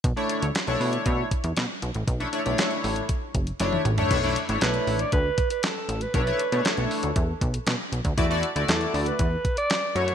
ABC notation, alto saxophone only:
X:1
M:4/4
L:1/16
Q:1/4=118
K:Bm
V:1 name="Alto saxophone"
z16 | z16 | z4 B3 d B3 B A3 B | B4 A6 z6 |
z4 A3 B4 d3 c2 |]